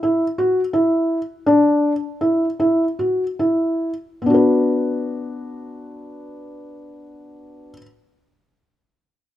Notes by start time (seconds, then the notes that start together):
0.03 E4
0.38 F#4
0.73 E4
1.46 D4
2.21 E4
2.60 E4
2.99 F#4
3.39 E4
4.22 B3
4.26 D4 F#4
4.34 B4